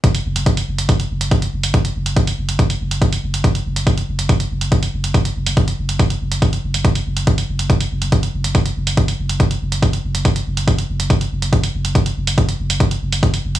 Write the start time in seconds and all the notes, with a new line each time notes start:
0.04 kick, closed hi-hat
0.15 closed hi-hat
0.25 F#1
0.36 F#1, closed hi-hat
0.46 kick, closed hi-hat
0.57 closed hi-hat
0.68 F#1
0.78 F#1, closed hi-hat
0.89 kick, closed hi-hat
1.00 closed hi-hat
1.10 F#1
1.21 F#1, closed hi-hat
1.31 kick, closed hi-hat
1.42 closed hi-hat
1.53 F#1
1.63 F#1, closed hi-hat
1.74 kick, closed hi-hat
1.85 closed hi-hat
1.95 F#1
2.06 F#1, closed hi-hat
2.17 kick, closed hi-hat
2.27 closed hi-hat
2.38 F#1
2.48 F#1, closed hi-hat
2.59 kick, closed hi-hat
2.70 closed hi-hat
2.80 F#1
2.91 F#1, closed hi-hat
3.02 kick, closed hi-hat
3.13 closed hi-hat
3.23 F#1
3.34 F#1, closed hi-hat
3.44 kick, closed hi-hat
3.55 closed hi-hat
3.65 F#1
3.76 F#1, closed hi-hat
3.87 kick, closed hi-hat
3.98 closed hi-hat
4.08 F#1
4.19 F#1, closed hi-hat
4.29 kick, closed hi-hat
4.40 closed hi-hat
4.50 F#1
4.61 F#1, closed hi-hat
4.72 kick, closed hi-hat
4.83 closed hi-hat
4.93 F#1
5.04 F#1, closed hi-hat
5.14 kick, closed hi-hat
5.25 closed hi-hat
5.36 F#1
5.46 F#1, closed hi-hat
5.57 kick, closed hi-hat
5.68 closed hi-hat
5.78 F#1
5.89 F#1, closed hi-hat
5.99 kick, closed hi-hat
6.10 closed hi-hat
6.21 F#1
6.31 F#1, closed hi-hat
6.42 kick, closed hi-hat
6.53 closed hi-hat
6.63 F#1
6.74 F#1, closed hi-hat
6.85 kick, closed hi-hat
6.95 closed hi-hat
7.06 F#1
7.17 F#1, closed hi-hat
7.27 kick, closed hi-hat
7.38 closed hi-hat
7.48 F#1
7.59 F#1, closed hi-hat
7.70 kick, closed hi-hat
7.80 closed hi-hat
7.91 F#1
8.02 F#1, closed hi-hat
8.12 kick, closed hi-hat
8.23 closed hi-hat
8.34 F#1
8.44 F#1, closed hi-hat
8.55 kick, closed hi-hat
8.66 closed hi-hat
8.76 F#1
8.87 F#1, closed hi-hat
8.97 kick, closed hi-hat
9.08 closed hi-hat
9.19 F#1
9.29 F#1, closed hi-hat
9.40 kick, closed hi-hat
9.51 closed hi-hat
9.61 F#1
9.72 F#1, closed hi-hat
9.82 kick, closed hi-hat
9.93 closed hi-hat
10.04 F#1
10.15 F#1, closed hi-hat
10.25 kick, closed hi-hat
10.36 closed hi-hat
10.46 F#1
10.57 F#1, closed hi-hat
10.68 kick, closed hi-hat
10.79 closed hi-hat
10.89 F#1
11.00 F#1, closed hi-hat
11.10 kick, closed hi-hat
11.21 closed hi-hat
11.31 F#1
11.42 F#1, closed hi-hat
11.53 kick, closed hi-hat
11.64 closed hi-hat
11.74 F#1
11.85 F#1, closed hi-hat
11.95 kick, closed hi-hat
12.06 closed hi-hat
12.16 F#1
12.27 F#1, closed hi-hat
12.38 kick, closed hi-hat
12.49 closed hi-hat
12.59 F#1
12.70 F#1, closed hi-hat
12.80 kick, closed hi-hat
12.91 closed hi-hat
13.01 F#1
13.12 F#1, closed hi-hat
13.23 kick, closed hi-hat
13.34 closed hi-hat
13.44 F#1
13.55 F#1, closed hi-hat